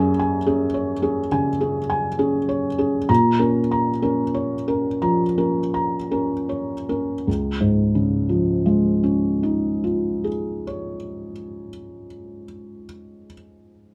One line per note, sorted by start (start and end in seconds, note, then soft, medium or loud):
0.00 1.28 F#2 medium
0.00 0.36 C#4 soft
0.00 0.36 G#4 soft
0.00 0.19 G#5 medium
0.19 0.64 G#5 soft
0.46 0.92 C#4 soft
0.46 0.92 G#4 soft
0.74 1.20 C#5 soft
1.02 1.48 C#4 soft
1.02 1.49 G#4 soft
1.32 1.78 C#3 soft
1.32 1.78 G#5 soft
1.61 2.07 C#4 soft
1.61 2.07 G#4 soft
1.90 2.37 G#5 soft
2.19 2.66 C#4 soft
2.19 2.66 G#4 soft
2.49 2.97 C#5 soft
2.78 3.09 C#4 soft
2.78 3.09 G#4 soft
3.09 4.97 A#2 soft
3.09 3.58 A#5 medium
3.39 3.90 C#4 soft
3.39 3.90 A#4 soft
3.71 4.22 A#5 soft
4.02 4.54 C#4 soft
4.02 4.54 A#4 soft
4.34 4.87 C#5 soft
4.68 5.23 C#4 soft
4.68 5.23 A#4 soft
5.02 5.58 F3 soft
5.02 5.58 A#5 soft
5.38 5.95 C#4 soft
5.38 5.95 A#4 soft
5.74 6.33 A#5 soft
6.11 6.72 C#4 soft
6.11 6.72 A#4 soft
6.49 7.12 C#5 soft
6.89 7.28 C#4 soft
6.89 7.28 A#4 soft
7.27 10.29 C#2 soft
7.60 10.62 G#2 soft
7.95 10.96 C#3 soft
8.29 11.30 F3 soft
8.66 11.67 G#3 soft
9.03 12.05 C#4 soft
9.43 12.44 D#4 soft
9.84 12.85 F4 soft
10.24 13.25 G#4 soft
10.67 13.31 C#5 soft